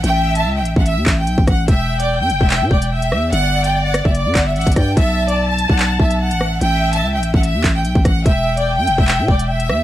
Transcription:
<<
  \new Staff \with { instrumentName = "Violin section" } { \time 4/4 \key a \mixolydian \tempo 4 = 146 g''8. a''8 g''8 fis''16 e''8. g''8. fis''8 | e''8. d''8 g''8 e''8. d''8 e''4 | fis''8. g''8 fis''8 e''16 d''8. e''16 fis''8 g''8 | e''8. d''8 a''8 fis''8. e''8 fis''4 |
g''8. a''8 g''8 fis''16 e''8. g''8. fis''8 | e''8. d''8 g''8 e''8. d''8 e''4 | }
  \new Staff \with { instrumentName = "Violin section" } { \time 4/4 \key a \mixolydian e''2 r2 | g''2.~ g''8 e''8 | d''2~ d''8 fis''8 e''8 d''8 | a''2.~ a''8 fis''8 |
e''2 r2 | g''2.~ g''8 e''8 | }
  \new Staff \with { instrumentName = "808-style bass" } { \clef bass \time 4/4 \key a \mixolydian a,,4 cis,16. a,,16. a,,8 e,16 a,,8 b,,16 a,,16 a,,8 | e,,4~ e,,16 g,16 e,,16 e,,8 b,16 e,,4 e,8 | g,,4.~ g,,16 fis,,8 g,16 g,,8 a,,16 g,,16 g,8 | b,,4.~ b,,16 b,,8. b,,8. a,,8. |
a,,4 cis,16. a,,16. a,,8 e,16 a,,8 b,,16 a,,16 a,,8 | e,,4~ e,,16 g,16 e,,16 e,,8 b,16 e,,4 e,8 | }
  \new DrumStaff \with { instrumentName = "Drums" } \drummode { \time 4/4 hh8. hh16 r8 hh16 bd16 hh8 <hc hh bd>8 hh16 bd16 <hh bd ss>8 | <hh bd>8. hh16 r8 hh16 bd16 <hc hh>8 bd16 hh16 r16 hh16 ss8 | hh8. hh16 r8 <hh ss>16 bd16 hh8 <hc hh bd>8 hh32 hh32 <hh bd>32 hh32 <hh bd ss>8 | <hh bd>8. hh16 r8 hh16 bd16 <hc hh>8 bd16 hh16 r16 hh16 ss8 |
hh8. hh16 r8 hh16 bd16 hh8 <hc hh bd>8 hh16 bd16 <hh bd ss>8 | <hh bd>8. hh16 r8 hh16 bd16 <hc hh>8 bd16 hh16 r16 hh16 ss8 | }
>>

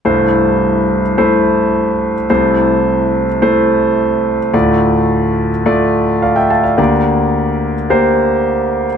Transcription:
<<
  \new Staff \with { instrumentName = "Grand piano" } { \time 4/4 \key c \mixolydian \tempo 4 = 107 << { r1 | r1 | r2. <d'' f''>16 <e'' g''>16 <f'' a''>16 <d'' f''>16~ | <d'' f''>16 r2. r8. | } \\ { <a e' c''>4. r8 <a e' c''>4. r8 | <a e' c''>4. r8 <a e' c''>4. r8 | <a f' d''>4. r8 <a f' d''>4. r8 | <bes g' d''>4. r8 <bes g' c''>4. r8 | } >> }
  \new Staff \with { instrumentName = "Grand piano" } { \clef bass \time 4/4 \key c \mixolydian <c, g,>1 | <c, c>1 | <d, a,>1 | <d, d>1 | }
>>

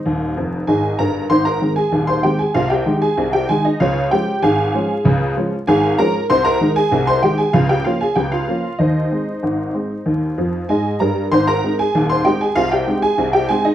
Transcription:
<<
  \new Staff \with { instrumentName = "Honky-tonk piano" } { \time 2/4 \key aes \major \tempo 4 = 96 <ees' c'' ees''>4 <aes' ees'' aes''>8 <bes' bes''>8 | <c'' c'''>16 <bes' bes''>8 <aes' aes''>8 <c'' c'''>16 <g' g''>16 <aes' aes''>16 | <f' f''>16 <g' g''>8 <aes' aes''>8 <g' g''>16 <aes' aes''>16 <ees' ees''>16 | <f' des'' f''>8 <g' g''>8 <aes' f'' aes''>4~ |
<aes' f'' aes''>8 r8 <aes' f'' aes''>8 <bes' bes''>8 | <c'' c'''>16 <bes' bes''>8 <aes' aes''>8 <c'' c'''>16 <g' g''>16 <aes' aes''>16 | <f' f''>16 <g' g''>16 <f' f''>16 <aes' aes''>16 <g' g''>16 <f' f''>8. | <ees' c'' ees''>2~ |
<ees' c'' ees''>4 <aes' ees'' aes''>8 <bes' bes''>8 | <c'' c'''>16 <bes' bes''>8 <aes' aes''>8 <c'' c'''>16 <g' g''>16 <aes' aes''>16 | <f' f''>16 <g' g''>8 <aes' aes''>8 <g' g''>16 <aes' aes''>16 <ees' ees''>16 | }
  \new Staff \with { instrumentName = "Honky-tonk piano" } { \clef bass \time 2/4 \key aes \major <ees,, ees,>8 <f,, f,>8 <aes,, aes,>8 <g,, g,>8 | <aes,, aes,>8 <ees aes c'>8 <ees,, ees,>8 <ees aes c'>8 | <c, c>8 <ees aes ees'>8 <c, c>8 <ees aes ees'>8 | <des, des>8 <f aes des'>8 <aes,, aes,>8 <f aes des'>8 |
<des, des>8 <f aes des'>8 <aes,, aes,>8 <f aes des'>8 | <c, c>8 <ees aes ees'>8 <c, c>8 <ees aes ees'>8 | <des, des>8 <f bes des'>8 <des, des>8 <f bes des'>8 | <ees, ees>8 <aes c'>8 <aes,, aes,>8 <aes c'>8 |
<ees, ees>8 <f, f>8 <aes, aes>8 <g, g>8 | <aes,, aes,>8 <aes c' ees'>8 <ees,, ees,>8 <aes c' ees'>8 | <c, c>8 <aes c' ees'>8 <c, c>8 <aes c' ees'>8 | }
>>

